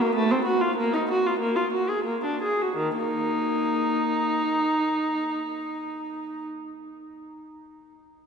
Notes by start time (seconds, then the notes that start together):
0.01 A#3
0.15 A3
0.31 C4
0.45 F#4
0.61 F4
0.76 A#3
0.93 D#4
1.11 F#4
1.26 F4
1.39 A#3
1.56 F4
1.73 F#4
1.89 G#4
2.04 A#3
2.25 D4
2.42 G#4
2.62 F#4
2.77 D#3
2.97 A#3 D#4